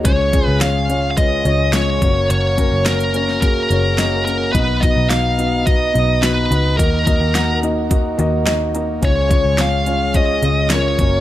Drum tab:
HH |x-x-x-x-x-x-x-x-|x-x-xxx-x-x-x-x-|x-x-x-x-x-x-x-x-|x-x-x-x-x-x-x-x-|
SD |----o-------o---|----o--o----o---|----o-------o---|----o-------o---|
BD |o-o-----o-----o-|--o-----o-------|o-o-----o-------|o-o-----o-------|

HH |x-x-x-x-x-x-x-x-|
SD |----o-------o---|
BD |o-o-----o-----o-|